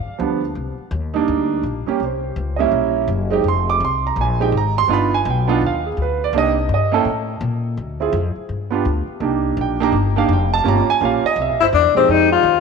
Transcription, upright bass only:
0, 0, Header, 1, 3, 480
1, 0, Start_track
1, 0, Key_signature, -3, "minor"
1, 0, Tempo, 360360
1, 738, Time_signature, 4, 2, 24, 8
1, 16785, End_track
2, 0, Start_track
2, 0, Title_t, "Upright bass"
2, 0, Program_c, 0, 32
2, 260, Note_on_c, 0, 38, 98
2, 725, Note_off_c, 0, 38, 0
2, 737, Note_on_c, 0, 36, 84
2, 1020, Note_off_c, 0, 36, 0
2, 1211, Note_on_c, 0, 39, 102
2, 1682, Note_off_c, 0, 39, 0
2, 1703, Note_on_c, 0, 38, 92
2, 2169, Note_off_c, 0, 38, 0
2, 2177, Note_on_c, 0, 34, 92
2, 2462, Note_off_c, 0, 34, 0
2, 2662, Note_on_c, 0, 36, 78
2, 3130, Note_off_c, 0, 36, 0
2, 3144, Note_on_c, 0, 37, 95
2, 3609, Note_off_c, 0, 37, 0
2, 3617, Note_on_c, 0, 34, 85
2, 4089, Note_off_c, 0, 34, 0
2, 4098, Note_on_c, 0, 30, 98
2, 4570, Note_off_c, 0, 30, 0
2, 4581, Note_on_c, 0, 29, 90
2, 5052, Note_off_c, 0, 29, 0
2, 5064, Note_on_c, 0, 36, 99
2, 5534, Note_off_c, 0, 36, 0
2, 5541, Note_on_c, 0, 34, 100
2, 6013, Note_off_c, 0, 34, 0
2, 6021, Note_on_c, 0, 32, 101
2, 6494, Note_off_c, 0, 32, 0
2, 6500, Note_on_c, 0, 31, 84
2, 6974, Note_off_c, 0, 31, 0
2, 6996, Note_on_c, 0, 35, 110
2, 7462, Note_off_c, 0, 35, 0
2, 7475, Note_on_c, 0, 39, 80
2, 7942, Note_off_c, 0, 39, 0
2, 7952, Note_on_c, 0, 38, 89
2, 8420, Note_off_c, 0, 38, 0
2, 8429, Note_on_c, 0, 36, 98
2, 8899, Note_off_c, 0, 36, 0
2, 8911, Note_on_c, 0, 43, 106
2, 9380, Note_off_c, 0, 43, 0
2, 9388, Note_on_c, 0, 45, 82
2, 9858, Note_off_c, 0, 45, 0
2, 9865, Note_on_c, 0, 46, 107
2, 10336, Note_off_c, 0, 46, 0
2, 10354, Note_on_c, 0, 38, 90
2, 10817, Note_off_c, 0, 38, 0
2, 10825, Note_on_c, 0, 41, 111
2, 11111, Note_off_c, 0, 41, 0
2, 11308, Note_on_c, 0, 43, 86
2, 11776, Note_off_c, 0, 43, 0
2, 11791, Note_on_c, 0, 38, 105
2, 12074, Note_off_c, 0, 38, 0
2, 12259, Note_on_c, 0, 36, 91
2, 12730, Note_off_c, 0, 36, 0
2, 12746, Note_on_c, 0, 34, 106
2, 13208, Note_off_c, 0, 34, 0
2, 13216, Note_on_c, 0, 31, 98
2, 13686, Note_off_c, 0, 31, 0
2, 13701, Note_on_c, 0, 29, 114
2, 14168, Note_off_c, 0, 29, 0
2, 14186, Note_on_c, 0, 31, 104
2, 14467, Note_off_c, 0, 31, 0
2, 14662, Note_on_c, 0, 34, 96
2, 14944, Note_off_c, 0, 34, 0
2, 15130, Note_on_c, 0, 36, 102
2, 15304, Note_off_c, 0, 36, 0
2, 15304, Note_on_c, 0, 34, 62
2, 15447, Note_off_c, 0, 34, 0
2, 15455, Note_on_c, 0, 31, 70
2, 15606, Note_off_c, 0, 31, 0
2, 15620, Note_on_c, 0, 40, 106
2, 15780, Note_on_c, 0, 36, 66
2, 15800, Note_off_c, 0, 40, 0
2, 15926, Note_off_c, 0, 36, 0
2, 15934, Note_on_c, 0, 34, 77
2, 16084, Note_off_c, 0, 34, 0
2, 16092, Note_on_c, 0, 41, 80
2, 16551, Note_off_c, 0, 41, 0
2, 16559, Note_on_c, 0, 39, 100
2, 16785, Note_off_c, 0, 39, 0
2, 16785, End_track
3, 0, Start_track
3, 0, Title_t, "Muted upright bass strokes"
3, 83, Note_on_c, 9, 29, 39
3, 216, Note_off_c, 9, 29, 0
3, 1040, Note_on_c, 9, 29, 36
3, 1173, Note_off_c, 9, 29, 0
3, 2494, Note_on_c, 9, 29, 37
3, 2627, Note_off_c, 9, 29, 0
3, 11132, Note_on_c, 9, 29, 50
3, 11265, Note_off_c, 9, 29, 0
3, 12086, Note_on_c, 9, 29, 43
3, 12219, Note_off_c, 9, 29, 0
3, 14492, Note_on_c, 9, 29, 47
3, 14625, Note_off_c, 9, 29, 0
3, 14966, Note_on_c, 9, 29, 48
3, 15099, Note_off_c, 9, 29, 0
3, 16785, End_track
0, 0, End_of_file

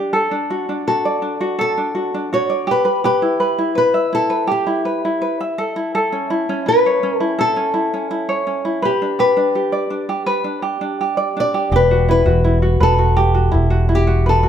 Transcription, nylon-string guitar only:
0, 0, Header, 1, 2, 480
1, 0, Start_track
1, 0, Tempo, 723764
1, 92, Time_signature, 4, 2, 24, 8
1, 9608, End_track
2, 0, Start_track
2, 0, Title_t, "Nylon-string guitar"
2, 0, Program_c, 0, 24
2, 581, Note_on_c, 0, 69, 70
2, 1030, Note_off_c, 0, 69, 0
2, 1068, Note_on_c, 0, 69, 81
2, 1547, Note_off_c, 0, 69, 0
2, 1550, Note_on_c, 0, 73, 79
2, 1788, Note_off_c, 0, 73, 0
2, 1798, Note_on_c, 0, 71, 77
2, 2017, Note_off_c, 0, 71, 0
2, 2025, Note_on_c, 0, 71, 82
2, 2472, Note_off_c, 0, 71, 0
2, 2505, Note_on_c, 0, 71, 77
2, 2746, Note_off_c, 0, 71, 0
2, 2750, Note_on_c, 0, 69, 80
2, 2988, Note_off_c, 0, 69, 0
2, 2994, Note_on_c, 0, 67, 67
2, 3677, Note_off_c, 0, 67, 0
2, 4433, Note_on_c, 0, 71, 85
2, 4765, Note_off_c, 0, 71, 0
2, 4765, Note_on_c, 0, 69, 85
2, 4877, Note_off_c, 0, 69, 0
2, 4912, Note_on_c, 0, 69, 88
2, 5871, Note_on_c, 0, 67, 76
2, 5891, Note_off_c, 0, 69, 0
2, 6101, Note_on_c, 0, 71, 81
2, 6109, Note_off_c, 0, 67, 0
2, 7511, Note_off_c, 0, 71, 0
2, 7561, Note_on_c, 0, 74, 81
2, 7794, Note_off_c, 0, 74, 0
2, 7798, Note_on_c, 0, 71, 92
2, 8022, Note_off_c, 0, 71, 0
2, 8029, Note_on_c, 0, 71, 88
2, 8506, Note_off_c, 0, 71, 0
2, 8508, Note_on_c, 0, 69, 84
2, 9242, Note_off_c, 0, 69, 0
2, 9252, Note_on_c, 0, 67, 75
2, 9457, Note_off_c, 0, 67, 0
2, 9478, Note_on_c, 0, 69, 80
2, 9608, Note_off_c, 0, 69, 0
2, 9608, End_track
0, 0, End_of_file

